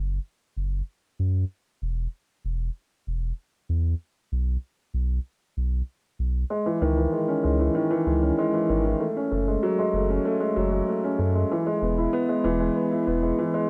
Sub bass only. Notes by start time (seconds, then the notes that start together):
Already playing: F#1
0.57 F#1
1.19 F#2
1.82 E1
2.45 E1
3.07 E1
3.69 E2
4.32 B1
4.94 B1
5.57 B1
6.19 B1
6.82 C#2
7.44 C#2
8.07 C#2
8.69 G#1
9.32 F#1
9.93 F#1
10.56 F#1
11.19 F#2
11.82 E1
12.44 E1
13.07 E1